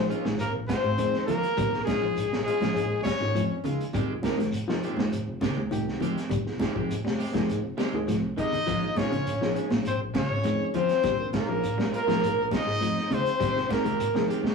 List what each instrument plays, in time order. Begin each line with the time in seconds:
Already playing: clean electric guitar F3, reed electric piano F3 A#3 D#4 G#4
0.09 clean electric guitar G#3 C#4 F4, closed hi-hat, shekere
0.25 fingered electric bass A#1, clean electric guitar D#3, snare, high conga
0.39 tenor saxophone A#3, trumpet A#4, snare, closed hi-hat, shekere
0.55 fingered electric bass A#1
0.68 clean electric guitar G#3 C#4 F4, tenor saxophone C4, trumpet C5, kick, snare, closed hi-hat, high conga, shekere
0.84 fingered electric bass G#1, high conga
0.98 fingered electric bass F2, clean electric guitar D#3, reed electric piano F3 A#3 D#4 G#4, closed hi-hat, high conga, shekere
1.14 snare
1.26 clean electric guitar F3 G#3 C#4 F4, tenor saxophone A#3, trumpet A#4, closed hi-hat, low conga, shekere
1.43 closed hi-hat
1.57 fingered electric bass A#1, clean electric guitar G3, kick, snare, closed hi-hat, low conga, shekere
1.72 reed electric piano D#4 G#4, snare
1.84 reed electric piano F3 A#3 D#4 G#4, tenor saxophone G#3, clean electric guitar G#3 C#4, trumpet G#4, kick, closed hi-hat, high conga, shekere
1.89 clean electric guitar F4, snare
2.02 fingered electric bass A#1, clean electric guitar F3
2.17 closed hi-hat, shekere
2.32 fingered electric bass A#1, clean electric guitar G3, snare
2.43 tenor saxophone G#3, clean electric guitar G#3 C#4 F4, trumpet G#4, shekere
2.48 closed hi-hat
2.61 fingered electric bass A#1, reed electric piano F3 A#3 D#4 G#4, clean electric guitar F3 C#4 F4, snare, closed hi-hat, high conga
2.75 closed hi-hat, shekere
2.90 fingered electric bass A#1
3.04 clean electric guitar G3 G#3 C#4, tenor saxophone C#4, trumpet C#5, muted clean electric guitar stroke, kick, snare, closed hi-hat, high conga, shekere
3.20 fingered electric bass G#1, reed electric piano F3 A#3 D#4 F4, snare
3.35 fingered electric bass F2, clean electric guitar F3, closed hi-hat, high conga, shekere
3.64 clean electric guitar C#3 G#3 F4, reed electric piano F3 A#3 D#4 G#4, closed hi-hat, low conga, shekere
3.81 closed hi-hat
3.93 fingered electric bass F1, clean electric guitar D#3 G3 G#3 C4 G4, kick, closed hi-hat, low conga, shekere
4.09 reed electric piano D#4 G#4
4.23 clean electric guitar D#3 G#3 C4 G4, reed electric piano F3 A#3 D#4 A#4, kick, snare, closed hi-hat, high conga, shekere
4.37 fingered electric bass F1, clean electric guitar D#3, snare, closed hi-hat, high conga
4.52 closed hi-hat, shekere
4.68 fingered electric bass F1, reed electric piano F3 A#3 D#4 F4, clean electric guitar F3, snare
4.82 clean electric guitar D#3 G#3 C4 G4, closed hi-hat, shekere
4.97 fingered electric bass F1, clean electric guitar D#3, snare, high conga
5.12 closed hi-hat, shekere
5.27 fingered electric bass F1
5.41 clean electric guitar C#3 D#3 G#3 C4 G4, kick, snare, closed hi-hat, high conga, shekere
5.56 fingered electric bass D#2, high conga
5.71 fingered electric bass C2, clean electric guitar D#3, reed electric piano F3 A#3 D#4 G4, closed hi-hat, high conga, shekere
5.89 snare
6.00 clean electric guitar D#3 F3 G#3 C4 G4, closed hi-hat, high conga, low conga, shekere
6.18 snare, closed hi-hat
6.29 fingered electric bass F1, clean electric guitar G3, kick, closed hi-hat, low conga, shekere
6.45 reed electric piano D#4 G#4, snare
6.59 clean electric guitar D#3 G#3 C4 G4, reed electric piano F3 A#3 D#4 G#4, kick, snare, closed hi-hat, high conga, shekere
6.74 fingered electric bass F1, clean electric guitar F3 G#3 C4 G4, kick
6.91 closed hi-hat, shekere
7.04 fingered electric bass F1, clean electric guitar G3, snare, high conga
7.18 clean electric guitar G#3 C4 G4, open hi-hat, shekere
7.33 fingered electric bass F1, reed electric piano F3 A#3 D#4 G#4, clean electric guitar F3 G#3 C4 G4, kick, snare, closed hi-hat, high conga
7.49 closed hi-hat, shekere
7.65 fingered electric bass F1
7.77 clean electric guitar D#3 G3 G#3 C4 G4, muted fingered electric bass stroke, snare, closed hi-hat, high conga, shekere
7.93 fingered electric bass D#2, reed electric piano F3 A#3 D#4 G#4, high conga
8.08 fingered electric bass C2, clean electric guitar F3, snare, closed hi-hat, high conga, shekere
8.37 clean electric guitar D#3 G#3 C4 G4, reed electric piano F3 A#3 D#4 G#4, tenor saxophone D#4, trumpet D#5, kick, closed hi-hat, shekere
8.52 closed hi-hat, low conga
8.66 fingered electric bass A#1, clean electric guitar F3 G#3 C#4 F4, kick, closed hi-hat, low conga, shekere
8.81 reed electric piano D#4 G#4
8.96 reed electric piano F3 A#3 D#4 G#4, clean electric guitar G#3 C#4 F4, tenor saxophone C#4, trumpet C#5, kick, snare, closed hi-hat, high conga, shekere
9.11 fingered electric bass A#1, clean electric guitar C#3 C#4 F4, closed hi-hat
9.27 closed hi-hat, shekere
9.41 fingered electric bass A#1, clean electric guitar F3, reed electric piano F3 A#3 D#4 G#4, snare
9.55 clean electric guitar G#3 C#4, closed hi-hat, shekere
9.69 fingered electric bass A#1, clean electric guitar A#2 C#4, muted clean electric guitar stroke, snare, high conga
9.85 tenor saxophone C4, trumpet C5, closed hi-hat, shekere
10.00 fingered electric bass A#1
10.14 clean electric guitar C#3 G#3 C#4 F4, tenor saxophone C#4, trumpet C#5, kick, snare, closed hi-hat, high conga, shekere
10.29 fingered electric bass G#1
10.43 fingered electric bass F2, clean electric guitar D#3, reed electric piano F3 A#3 D#4 G#4, closed hi-hat, high conga, shekere
10.74 clean electric guitar F3 G#3 C#4 F4, tenor saxophone C4, trumpet C5, closed hi-hat, low conga, shekere
10.89 snare, closed hi-hat
11.03 fingered electric bass A#1, clean electric guitar G3, kick, snare, closed hi-hat, low conga, shekere
11.19 reed electric piano D#4 A#4
11.33 reed electric piano F3 A#3 D#4 G#4, clean electric guitar G#3 C#4 F4, tenor saxophone A#3, trumpet A#4, kick, snare, closed hi-hat, high conga, shekere
11.47 fingered electric bass A#1, clean electric guitar F3 C#4, muted clean electric guitar stroke
11.63 closed hi-hat, shekere
11.77 fingered electric bass A#1, clean electric guitar G3, snare, high conga
11.92 clean electric guitar G#3 F4, closed hi-hat, shekere
11.96 tenor saxophone A#3, trumpet A#4
12.07 fingered electric bass A#1, reed electric piano F3 A#3 D#4 G#4, clean electric guitar F3 C#4 F4, snare, closed hi-hat, high conga
12.23 closed hi-hat, shekere
12.37 fingered electric bass A#1
12.51 clean electric guitar G3 G#3 C#4 F4, tenor saxophone D#4, trumpet D#5, kick, snare, closed hi-hat, high conga, shekere
12.66 fingered electric bass G#1, reed electric piano F3 A#3 D#4 G#4
12.81 fingered electric bass F2, clean electric guitar F3, closed hi-hat, high conga, shekere
12.98 snare
13.10 clean electric guitar C#3 G#3 C#4 F4, reed electric piano F3 A#3 D#4 G#4, tenor saxophone C4, trumpet C5, closed hi-hat, high conga, low conga, shekere
13.26 closed hi-hat
13.39 fingered electric bass F1, clean electric guitar D#3 G3 G#3 C4 G4, kick, closed hi-hat, low conga, shekere
13.55 reed electric piano D#4 G#4, snare
13.68 clean electric guitar D#3 G#3 C4 G4, reed electric piano F3 A#3 D#4 G#4, tenor saxophone A#3, kick, snare, closed hi-hat, high conga, shekere
13.73 trumpet A#4
13.84 fingered electric bass F1, clean electric guitar D#3 G#3 C4 G4, closed hi-hat, high conga
14.00 closed hi-hat, shekere
14.14 fingered electric bass F1, reed electric piano F3 A#3 D#4 G#4, clean electric guitar F3, snare, high conga
14.28 clean electric guitar D#3 C4 G4, closed hi-hat, shekere
14.43 fingered electric bass F1, clean electric guitar G#3 C4 G4, muted clean electric guitar stroke, snare, high conga